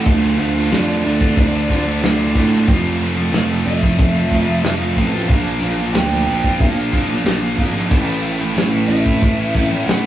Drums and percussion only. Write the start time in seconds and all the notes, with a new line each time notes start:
0.06 kick, open hi-hat
0.39 open hi-hat
0.72 snare, open hi-hat
1.04 open hi-hat
1.21 kick
1.37 kick, open hi-hat
1.70 kick, open hi-hat
2.03 snare, open hi-hat
2.35 kick, open hi-hat
2.53 snare
2.68 kick, open hi-hat
3.01 open hi-hat
3.33 snare, open hi-hat
3.66 open hi-hat
3.83 kick
3.98 kick, open hi-hat
4.31 kick, open hi-hat
4.64 snare, open hi-hat
4.96 kick, open hi-hat
5.14 snare
5.29 kick, open hi-hat
5.62 open hi-hat
5.94 snare, open hi-hat
6.27 open hi-hat
6.44 kick
6.60 kick, open hi-hat
6.93 kick, open hi-hat
7.25 snare, open hi-hat
7.58 kick, open hi-hat
7.76 snare
7.91 kick, crash
8.24 open hi-hat
8.57 snare, open hi-hat
8.90 open hi-hat
9.06 kick
9.22 kick, open hi-hat
9.55 kick, open hi-hat
9.88 snare, open hi-hat